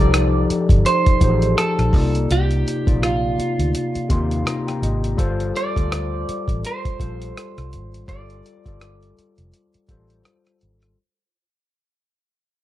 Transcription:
Already playing: tine electric piano F3, clean electric guitar D5
0.00 fingered electric bass C2, tine electric piano D#4 G4 A4 D5
0.14 cross-stick, closed hi-hat
0.50 muted fingered electric bass stroke, closed hi-hat
0.69 fingered electric bass G1, kick, closed hi-hat
0.86 clean electric guitar C5, closed hi-hat
1.06 muted fingered electric bass stroke, kick, closed hi-hat
1.21 fingered electric bass A1, tine electric piano F3 D#4 G4 G#4 C5, kick, closed hi-hat
1.30 tine electric piano A4
1.42 closed hi-hat
1.58 clean electric guitar A4, cross-stick, closed hi-hat
1.79 fingered electric bass A#1, cross-stick, closed hi-hat
1.93 fingered electric bass C2, tine electric piano C3 A#3 D#4 F4 D5, kick, open hi-hat
2.15 closed hi-hat
2.31 fingered electric bass C2, clean electric guitar G4, closed hi-hat
2.51 closed hi-hat
2.68 closed hi-hat
2.86 fingered electric bass A#1, tine electric piano C3 A#3 D#4 F4 D5, kick, closed hi-hat
3.03 clean electric guitar F4, cross-stick, closed hi-hat
3.39 muted fingered electric bass stroke, closed hi-hat
3.59 fingered electric bass D2, closed hi-hat
3.75 closed hi-hat
3.95 muted fingered electric bass stroke, closed hi-hat
4.09 fingered electric bass D#2, tine electric piano C3 A#3 D#4 F4 G4 C6, kick, closed hi-hat
4.31 closed hi-hat
4.46 tine electric piano A#5, cross-stick, closed hi-hat
4.67 tine electric piano G5, cross-stick, closed hi-hat
4.82 fingered electric bass G#1, tine electric piano D#5, closed hi-hat
5.04 closed hi-hat
5.17 fingered electric bass G1, tine electric piano G3 F4 A4 C5, kick, closed hi-hat
5.40 closed hi-hat
5.56 clean electric guitar D5, closed hi-hat
5.75 fingered electric bass D2, tine electric piano G3 F4 A4 D5, kick, closed hi-hat
5.92 cross-stick, closed hi-hat
6.29 muted fingered electric bass stroke, closed hi-hat
6.48 fingered electric bass A1, kick, closed hi-hat
6.65 clean electric guitar C5, closed hi-hat
6.85 muted fingered electric bass stroke, kick, closed hi-hat
6.99 fingered electric bass A#1, tine electric piano G3 F4 A4 C5, kick, closed hi-hat
7.22 closed hi-hat
7.37 cross-stick, closed hi-hat
7.58 fingered electric bass C2, cross-stick, closed hi-hat
7.73 fingered electric bass G#1, closed hi-hat
7.94 closed hi-hat
8.07 fingered electric bass G1, tine electric piano G3 F4 A4 D5, clean electric guitar D5, kick, closed hi-hat
8.30 closed hi-hat
8.46 closed hi-hat
8.65 fingered electric bass G1, tine electric piano G3 F4 A4 D5, kick, closed hi-hat
8.81 cross-stick, closed hi-hat
9.03 closed hi-hat
9.19 muted fingered electric bass stroke, closed hi-hat
9.38 fingered electric bass F1, closed hi-hat
9.54 closed hi-hat
9.74 muted fingered electric bass stroke, closed hi-hat
9.88 fingered electric bass A1, tine electric piano G3 F4 A4 C5, kick, closed hi-hat
10.10 closed hi-hat
10.25 cross-stick, closed hi-hat
10.46 cross-stick, closed hi-hat
10.61 fingered electric bass G#1, closed hi-hat
10.82 cross-stick, closed hi-hat

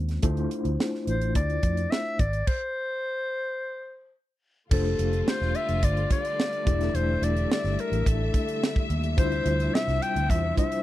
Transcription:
Already playing: fingered electric bass D#2, tine electric piano G#3 C4 C#4 F4 C5
0.09 snare, closed hi-hat
0.22 fingered electric bass D2, tine electric piano A3 D4 E4 F4 C5, kick, closed hi-hat
0.37 closed hi-hat
0.51 closed hi-hat
0.65 fingered electric bass D2, closed hi-hat
0.80 snare
0.95 snare
1.07 fingered electric bass A1, clarinet C5, closed hi-hat
1.21 closed hi-hat
1.35 fingered electric bass D2, clarinet D5, kick, closed hi-hat
1.50 closed hi-hat
1.63 fingered electric bass F2, kick, closed hi-hat
1.77 closed hi-hat
1.91 clarinet E5, snare
2.19 fingered electric bass G#1, clarinet D5, kick, closed hi-hat
2.33 closed hi-hat
2.47 clarinet C5, kick, crash
4.70 fingered electric bass F1, string section D3 G3 A3 F4, tine electric piano A3 D4 F4 G4 C5, clarinet A4, kick, crash
4.85 closed hi-hat
4.99 fingered electric bass F1, closed hi-hat
5.13 closed hi-hat
5.28 clarinet C5, snare
5.41 fingered electric bass E1, snare
5.55 clarinet E5, closed hi-hat
5.69 fingered electric bass F1, closed hi-hat
5.83 fingered electric bass G1, clarinet D5, kick, closed hi-hat
5.97 closed hi-hat
6.10 clarinet D5, kick, closed hi-hat
6.25 closed hi-hat
6.40 snare
6.53 closed hi-hat
6.65 fingered electric bass E1, tine electric piano A3 D4 E4 G4 D5, string section E5, kick, closed hi-hat
6.81 snare, closed hi-hat
6.94 fingered electric bass E1, clarinet C5, closed hi-hat
7.22 fingered electric bass E1, clarinet D5, closed hi-hat
7.37 closed hi-hat
7.51 clarinet D5, snare
7.64 fingered electric bass G1, snare, closed hi-hat
7.79 clarinet A#4, closed hi-hat
7.92 fingered electric bass A1, closed hi-hat
8.06 fingered electric bass A1, clarinet A4, kick, closed hi-hat
8.34 kick, closed hi-hat
8.48 closed hi-hat
8.63 snare
8.76 kick
8.90 fingered electric bass D#2, closed hi-hat
9.03 closed hi-hat
9.16 fingered electric bass D2, string section C3 F3, tine electric piano G3 D4 E4 F4 C5, clarinet C5, kick, closed hi-hat
9.32 closed hi-hat
9.46 fingered electric bass D2, closed hi-hat
9.60 closed hi-hat
9.74 clarinet E5, snare
9.88 fingered electric bass C2, snare, closed hi-hat
10.02 clarinet G5, closed hi-hat
10.16 fingered electric bass D2, closed hi-hat
10.30 fingered electric bass E2, clarinet E5, kick, closed hi-hat
10.57 tine electric piano G3 D4 E4 F4 C5, clarinet E5, kick, closed hi-hat
10.72 closed hi-hat

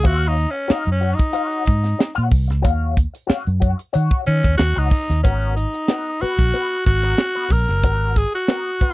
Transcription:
0.04 fingered electric bass D#2, clean electric guitar F4 C5 E5, tenor saxophone F#4, kick, closed hi-hat
0.17 clean electric guitar F#4 C#5 F5
0.28 tenor saxophone D#4
0.38 closed hi-hat
0.51 tenor saxophone C#4, muted clean electric guitar stroke
0.55 closed hi-hat
0.68 tenor saxophone D#4, clean electric guitar F#4 C#5 F5, muted fingered electric bass stroke, snare, closed hi-hat
0.86 fingered electric bass F#2, muted clean electric guitar stroke, closed hi-hat
0.92 tenor saxophone C#4
1.01 clean electric guitar F#4 C#5 F#5, closed hi-hat
1.14 tenor saxophone D#4, muted clean electric guitar stroke
1.19 kick, closed hi-hat
1.33 clean electric guitar F4 C5 F5, closed hi-hat
1.46 clean electric guitar F#4 C#5 F#5
1.51 closed hi-hat
1.66 fingered electric bass G#2, muted clean electric guitar stroke, kick, closed hi-hat
1.83 muted clean electric guitar stroke, snare, closed hi-hat
1.99 muted clean electric guitar stroke, snare, closed hi-hat
2.15 fingered electric bass A#2, clean electric guitar F#4 C#5 F#5
2.31 fingered electric bass C2, muted clean electric guitar stroke, kick, open hi-hat
2.48 fingered electric bass C#2, muted clean electric guitar stroke, snare, closed hi-hat
2.62 fingered electric bass D#2, clean electric guitar F#4 C#5 F5, kick, closed hi-hat
2.97 kick, closed hi-hat
3.14 muted clean electric guitar stroke, closed hi-hat
3.27 clean electric guitar F#4 C#5 F5, muted fingered electric bass stroke, snare, closed hi-hat
3.45 fingered electric bass F#2, muted clean electric guitar stroke, closed hi-hat
3.60 clean electric guitar F#4 C#5 F#5, kick, closed hi-hat
3.78 muted clean electric guitar stroke, closed hi-hat
3.93 fingered electric bass D#3, clean electric guitar F#4 C#5 F#5, closed hi-hat
4.11 kick
4.26 fingered electric bass D#3, tenor saxophone C#4, muted clean electric guitar stroke, closed hi-hat
4.43 fingered electric bass D#2, muted clean electric guitar stroke, kick, snare, closed hi-hat
4.57 fingered electric bass D#2, tenor saxophone F#4, muted clean electric guitar stroke, snare, closed hi-hat
4.76 fingered electric bass C#2, tenor saxophone D#4, clean electric guitar F#4 C#5 F#5, closed hi-hat
4.91 muted clean electric guitar stroke, kick, open hi-hat
5.09 fingered electric bass D#2, muted clean electric guitar stroke, snare, closed hi-hat
5.23 fingered electric bass G#1, clean electric guitar B3 F#4 A#4, tenor saxophone C#4, kick, closed hi-hat
5.42 closed hi-hat
5.56 tenor saxophone D#4, closed hi-hat
5.74 muted clean electric guitar stroke, closed hi-hat
5.88 clean electric guitar B3 F#4 A#4, snare, closed hi-hat
6.06 muted clean electric guitar stroke, closed hi-hat
6.21 clean electric guitar B3 F#4 B4, tenor saxophone F#4, muted fingered electric bass stroke, closed hi-hat
6.37 fingered electric bass A#1, kick, closed hi-hat
6.52 clean electric guitar B3 F#4 B4, closed hi-hat
6.69 closed hi-hat
6.84 fingered electric bass G#1, tenor saxophone F#4, muted clean electric guitar stroke, kick, closed hi-hat
7.03 clean electric guitar B3 F#4 A#4, snare, closed hi-hat
7.18 muted clean electric guitar stroke, snare, closed hi-hat
7.35 clean electric guitar B3 F#4 B4
7.50 fingered electric bass A#1, tenor saxophone A#4, muted clean electric guitar stroke, kick, open hi-hat
7.68 fingered electric bass F#1, muted clean electric guitar stroke, snare, closed hi-hat
7.84 fingered electric bass G#1, clean electric guitar B3 F#4 A#4, kick, closed hi-hat
8.16 tenor saxophone G#4, kick, closed hi-hat
8.33 tenor saxophone F#4, muted clean electric guitar stroke, closed hi-hat
8.48 clean electric guitar B3 F#4 A#4, snare, closed hi-hat
8.65 muted clean electric guitar stroke, closed hi-hat
8.80 clean electric guitar B3 F#4 B4, muted fingered electric bass stroke, kick, closed hi-hat

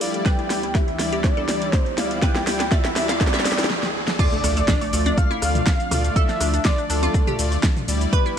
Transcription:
Already playing: analog synth pad F3 A3 D4 G4, synth arpeggio sound G4, riser
0.01 supersaw synth G3 E4 D5, analog synth lead F5, open hi-hat
0.14 closed hi-hat
0.26 analog synth pad D2 E3 B3, synth arpeggio sound B4, analog synth lead G5, kick, snare, closed hi-hat
0.39 synth arpeggio sound E4, closed hi-hat
0.50 supersaw synth G3 E4 D5, synth arpeggio sound E4, snare, open hi-hat
0.63 synth arpeggio sound E4, closed hi-hat
0.75 synth arpeggio sound G4, analog synth lead E5, kick, snare, closed hi-hat
0.88 synth arpeggio sound E4, closed hi-hat
0.99 supersaw synth G3 E4 D5, synth arpeggio sound E4, snare, open hi-hat
1.13 synth arpeggio sound G4, closed hi-hat
1.24 synth arpeggio sound E4, analog synth lead D5, kick, snare, closed hi-hat
1.37 synth arpeggio sound A4, closed hi-hat
1.49 supersaw synth G3 E4 D5, snare, open hi-hat
1.62 closed hi-hat
1.73 analog synth lead C5, kick, snare, closed hi-hat
1.86 closed hi-hat
1.98 supersaw synth G3 E4 D5, analog synth lead F5, snare, open hi-hat
2.11 closed hi-hat
2.22 synth arpeggio sound B4, analog synth lead G5, kick, snare, closed hi-hat, noise sweep
2.35 synth arpeggio sound E4, snare, closed hi-hat
2.47 supersaw synth G3 E4 D5, synth arpeggio sound E4, snare, open hi-hat
2.60 synth arpeggio sound E4, snare, closed hi-hat
2.72 synth arpeggio sound D5, analog synth lead E5, kick, snare, closed hi-hat
2.85 synth arpeggio sound E4, snare, closed hi-hat
2.96 supersaw synth G3 E4 D5, synth arpeggio sound E4, snare, open hi-hat
3.09 synth arpeggio sound F5, snare, closed hi-hat
3.21 synth arpeggio sound E4, analog synth lead D5, kick, snare, closed hi-hat
3.27 snare
3.34 synth arpeggio sound E5, snare, closed hi-hat
3.40 snare
3.45 supersaw synth G3 E4 G5, snare, open hi-hat
3.52 snare
3.58 snare, open hi-hat
3.64 snare
3.70 snare
3.83 snare
4.08 snare
4.19 analog synth pad D3 F3 A3 D4, synth arpeggio sound F4, analog synth lead D5, synth bell D6, kick, closed hi-hat, crash, impact, high woodblock, shaker
4.32 synth arpeggio sound A3, closed hi-hat, shaker
4.44 analog synth bass D2, supersaw synth A3 F4 D5, synth arpeggio sound A3, cross-stick, open hi-hat, shaker
4.57 synth arpeggio sound A3, closed hi-hat, shaker
4.68 synth arpeggio sound D4, kick, snare, closed hi-hat, shaker
4.81 synth arpeggio sound A3, open hi-hat, high woodblock, shaker
4.93 analog synth bass D2, supersaw synth A3 F4 D5, synth arpeggio sound A3, open hi-hat, shaker
5.06 synth arpeggio sound D4, closed hi-hat, high conga, shaker
5.18 synth arpeggio sound A3, analog synth lead F5, synth bell F6, kick, closed hi-hat, shaker
5.30 synth arpeggio sound E4, closed hi-hat, high conga, high woodblock, shaker
5.42 analog synth bass D2, supersaw synth A3 F4 D5, cross-stick, open hi-hat, shaker
5.55 closed hi-hat, mid tom, shaker
5.67 kick, snare, closed hi-hat, high conga, shaker
5.80 closed hi-hat, shaker
5.91 analog synth bass D2, supersaw synth A3 F4 D5, cross-stick, mid tom, open hi-hat, high conga, high woodblock, shaker
6.04 closed hi-hat, shaker
6.16 synth arpeggio sound A4, analog synth lead E5, synth bell E6, kick, closed hi-hat, shaker
6.29 synth arpeggio sound D4, snare, closed hi-hat, shaker
6.40 analog synth bass D2, supersaw synth A3 F4 D5, synth arpeggio sound D4, cross-stick, open hi-hat, high woodblock, shaker
6.54 synth arpeggio sound D4, closed hi-hat, shaker
6.65 synth arpeggio sound F4, analog synth lead D5, synth bell D6, kick, snare, closed hi-hat, shaker
6.78 synth arpeggio sound D4, closed hi-hat, shaker
6.90 analog synth bass D2, supersaw synth A3 F4 D5, synth arpeggio sound D4, analog synth lead A4, synth bell A5, open hi-hat, shaker
7.03 synth arpeggio sound F4, closed hi-hat, high conga, high woodblock, shaker
7.14 synth arpeggio sound D4, kick, closed hi-hat, shaker
7.27 synth arpeggio sound G4, closed hi-hat, mid tom, shaker
7.39 analog synth bass D2, supersaw synth A3 F4 D5, open hi-hat, shaker
7.52 closed hi-hat, high woodblock, shaker
7.63 kick, snare, closed hi-hat, shaker
7.76 closed hi-hat, mid tom, shaker
7.88 analog synth bass D2, supersaw synth G3 E4 D5, open hi-hat, shaker
8.01 closed hi-hat, shaker
8.13 analog synth pad G3 B3 E4, synth arpeggio sound B4, analog synth lead B4, synth bell B5, kick, closed hi-hat, high woodblock, shaker
8.26 synth arpeggio sound E4, closed hi-hat, shaker

